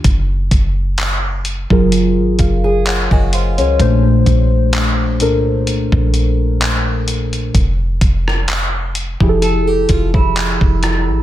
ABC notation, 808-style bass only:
X:1
M:4/4
L:1/16
Q:"Swing 16ths" 1/4=64
K:F
V:1 name="808-style bass" clef=bass
_G,,,2 G,,,4- G,,, G,,,2 _A,,, G,,,3 G,,,2 _D,, | B,,,2 B,,,4 C,,3 B,,,6- B,,, | F,,,2 F,,,4- F,,, F,,,3 F,,,3 F,,,2 A,,, |]